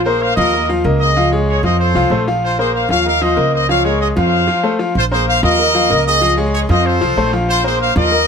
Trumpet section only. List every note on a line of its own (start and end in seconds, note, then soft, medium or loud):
0.04 0.21 G#4 medium
0.04 0.19 C5 medium
0.21 0.38 C5 medium
0.21 0.37 F5 medium
0.35 0.71 A#4 medium
0.35 0.70 D#5 loud
1.00 1.30 G#4 medium
1.00 1.29 D#5 loud
1.48 1.63 G#4 medium
1.48 1.62 C#5 medium
1.62 1.78 C5 medium
1.62 1.78 D#5 medium
1.79 2.24 A4 medium
1.79 2.23 C5 loud
2.42 2.58 F4 medium
2.42 2.57 C5 medium
2.58 2.73 G#4 medium
2.58 2.73 C5 medium
2.73 2.89 C5 medium
2.73 2.88 F5 medium
2.90 3.06 C#5 medium
2.90 3.05 F5 loud
3.06 3.21 A#4 medium
3.06 3.21 F5 loud
3.22 3.53 C5 medium
3.22 3.52 D#5 medium
3.53 3.68 C5 medium
3.53 3.68 D#5 medium
3.69 3.84 C#5 medium
3.69 3.83 F5 loud
3.85 4.00 A#4 medium
3.85 3.99 C#5 medium
4.01 4.09 G#4 medium
4.01 4.08 D#5 medium
4.17 4.76 C5 medium
4.17 4.76 F5 medium
4.97 5.04 F4 medium
4.97 5.03 C5 loud
5.12 5.27 G#4 medium
5.12 5.26 C5 medium
5.27 5.42 C5 medium
5.27 5.42 F5 loud
5.43 6.02 A#4 medium
5.43 6.02 D#5 loud
6.07 6.36 G#4 medium
6.07 6.36 D#5 loud
6.53 6.61 G#4 medium
6.53 6.60 C#5 medium
6.70 6.84 C5 medium
6.70 6.84 D#5 loud
6.85 7.33 A4 medium
6.85 7.33 C5 loud
7.49 7.63 F4 medium
7.49 7.63 C5 loud
7.65 7.79 G#4 medium
7.65 7.79 C5 loud
7.80 7.95 C5 medium
7.80 7.95 F5 loud
7.96 8.27 A#4 medium
7.96 8.27 D#5 loud